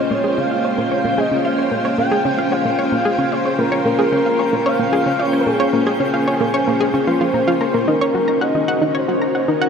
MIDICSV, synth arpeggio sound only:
0, 0, Header, 1, 2, 480
1, 0, Start_track
1, 0, Tempo, 535714
1, 1297, Time_signature, 4, 2, 24, 8
1, 8684, End_track
2, 0, Start_track
2, 0, Title_t, "Synth arpeggio sound"
2, 0, Program_c, 0, 84
2, 96, Note_on_c, 0, 58, 75
2, 211, Note_off_c, 0, 58, 0
2, 215, Note_on_c, 0, 68, 95
2, 330, Note_off_c, 0, 68, 0
2, 339, Note_on_c, 0, 61, 77
2, 452, Note_off_c, 0, 61, 0
2, 458, Note_on_c, 0, 77, 73
2, 507, Note_off_c, 0, 77, 0
2, 579, Note_on_c, 0, 73, 74
2, 661, Note_off_c, 0, 73, 0
2, 698, Note_on_c, 0, 58, 70
2, 781, Note_off_c, 0, 58, 0
2, 819, Note_on_c, 0, 73, 93
2, 902, Note_off_c, 0, 73, 0
2, 938, Note_on_c, 0, 58, 77
2, 1051, Note_off_c, 0, 58, 0
2, 1058, Note_on_c, 0, 68, 96
2, 1172, Note_off_c, 0, 68, 0
2, 1178, Note_on_c, 0, 61, 71
2, 1291, Note_off_c, 0, 61, 0
2, 1298, Note_on_c, 0, 77, 82
2, 1348, Note_off_c, 0, 77, 0
2, 1418, Note_on_c, 0, 73, 73
2, 1501, Note_off_c, 0, 73, 0
2, 1538, Note_on_c, 0, 58, 74
2, 1621, Note_off_c, 0, 58, 0
2, 1657, Note_on_c, 0, 73, 96
2, 1741, Note_off_c, 0, 73, 0
2, 1777, Note_on_c, 0, 58, 81
2, 1891, Note_off_c, 0, 58, 0
2, 1895, Note_on_c, 0, 68, 98
2, 2010, Note_off_c, 0, 68, 0
2, 2018, Note_on_c, 0, 61, 73
2, 2131, Note_off_c, 0, 61, 0
2, 2137, Note_on_c, 0, 77, 74
2, 2187, Note_off_c, 0, 77, 0
2, 2258, Note_on_c, 0, 73, 82
2, 2341, Note_off_c, 0, 73, 0
2, 2378, Note_on_c, 0, 58, 73
2, 2461, Note_off_c, 0, 58, 0
2, 2497, Note_on_c, 0, 73, 94
2, 2580, Note_off_c, 0, 73, 0
2, 2618, Note_on_c, 0, 58, 69
2, 2731, Note_off_c, 0, 58, 0
2, 2735, Note_on_c, 0, 68, 94
2, 2850, Note_off_c, 0, 68, 0
2, 2853, Note_on_c, 0, 61, 76
2, 2969, Note_off_c, 0, 61, 0
2, 2974, Note_on_c, 0, 77, 74
2, 3026, Note_off_c, 0, 77, 0
2, 3095, Note_on_c, 0, 73, 74
2, 3179, Note_off_c, 0, 73, 0
2, 3213, Note_on_c, 0, 58, 83
2, 3298, Note_off_c, 0, 58, 0
2, 3332, Note_on_c, 0, 73, 98
2, 3418, Note_off_c, 0, 73, 0
2, 3454, Note_on_c, 0, 58, 73
2, 3569, Note_off_c, 0, 58, 0
2, 3572, Note_on_c, 0, 68, 95
2, 3688, Note_off_c, 0, 68, 0
2, 3695, Note_on_c, 0, 61, 84
2, 3810, Note_off_c, 0, 61, 0
2, 3817, Note_on_c, 0, 77, 73
2, 3867, Note_off_c, 0, 77, 0
2, 3935, Note_on_c, 0, 73, 75
2, 4019, Note_off_c, 0, 73, 0
2, 4057, Note_on_c, 0, 58, 73
2, 4140, Note_off_c, 0, 58, 0
2, 4174, Note_on_c, 0, 73, 100
2, 4259, Note_off_c, 0, 73, 0
2, 4294, Note_on_c, 0, 58, 73
2, 4410, Note_off_c, 0, 58, 0
2, 4415, Note_on_c, 0, 68, 97
2, 4530, Note_off_c, 0, 68, 0
2, 4537, Note_on_c, 0, 61, 71
2, 4651, Note_off_c, 0, 61, 0
2, 4654, Note_on_c, 0, 77, 80
2, 4706, Note_off_c, 0, 77, 0
2, 4777, Note_on_c, 0, 73, 76
2, 4860, Note_off_c, 0, 73, 0
2, 4896, Note_on_c, 0, 58, 72
2, 4980, Note_off_c, 0, 58, 0
2, 5016, Note_on_c, 0, 73, 99
2, 5100, Note_off_c, 0, 73, 0
2, 5136, Note_on_c, 0, 58, 81
2, 5250, Note_off_c, 0, 58, 0
2, 5256, Note_on_c, 0, 68, 98
2, 5371, Note_off_c, 0, 68, 0
2, 5376, Note_on_c, 0, 61, 77
2, 5491, Note_off_c, 0, 61, 0
2, 5499, Note_on_c, 0, 77, 73
2, 5548, Note_off_c, 0, 77, 0
2, 5622, Note_on_c, 0, 73, 79
2, 5703, Note_off_c, 0, 73, 0
2, 5740, Note_on_c, 0, 58, 77
2, 5822, Note_off_c, 0, 58, 0
2, 5859, Note_on_c, 0, 73, 95
2, 5942, Note_off_c, 0, 73, 0
2, 5980, Note_on_c, 0, 58, 73
2, 6092, Note_off_c, 0, 58, 0
2, 6098, Note_on_c, 0, 68, 97
2, 6211, Note_off_c, 0, 68, 0
2, 6217, Note_on_c, 0, 61, 75
2, 6331, Note_off_c, 0, 61, 0
2, 6338, Note_on_c, 0, 65, 76
2, 6448, Note_off_c, 0, 65, 0
2, 6458, Note_on_c, 0, 65, 71
2, 6541, Note_off_c, 0, 65, 0
2, 6577, Note_on_c, 0, 58, 77
2, 6660, Note_off_c, 0, 58, 0
2, 6698, Note_on_c, 0, 65, 97
2, 6781, Note_off_c, 0, 65, 0
2, 6817, Note_on_c, 0, 70, 72
2, 6900, Note_off_c, 0, 70, 0
2, 6937, Note_on_c, 0, 58, 72
2, 6987, Note_off_c, 0, 58, 0
2, 7059, Note_on_c, 0, 63, 81
2, 7172, Note_off_c, 0, 63, 0
2, 7180, Note_on_c, 0, 73, 94
2, 7293, Note_off_c, 0, 73, 0
2, 7300, Note_on_c, 0, 66, 76
2, 7412, Note_off_c, 0, 66, 0
2, 7417, Note_on_c, 0, 82, 73
2, 7467, Note_off_c, 0, 82, 0
2, 7539, Note_on_c, 0, 78, 84
2, 7621, Note_off_c, 0, 78, 0
2, 7660, Note_on_c, 0, 63, 74
2, 7742, Note_off_c, 0, 63, 0
2, 7779, Note_on_c, 0, 78, 99
2, 7861, Note_off_c, 0, 78, 0
2, 7898, Note_on_c, 0, 63, 75
2, 8011, Note_off_c, 0, 63, 0
2, 8016, Note_on_c, 0, 73, 100
2, 8130, Note_off_c, 0, 73, 0
2, 8139, Note_on_c, 0, 66, 77
2, 8252, Note_off_c, 0, 66, 0
2, 8257, Note_on_c, 0, 82, 73
2, 8307, Note_off_c, 0, 82, 0
2, 8377, Note_on_c, 0, 78, 72
2, 8460, Note_off_c, 0, 78, 0
2, 8496, Note_on_c, 0, 63, 79
2, 8580, Note_off_c, 0, 63, 0
2, 8615, Note_on_c, 0, 78, 102
2, 8684, Note_off_c, 0, 78, 0
2, 8684, End_track
0, 0, End_of_file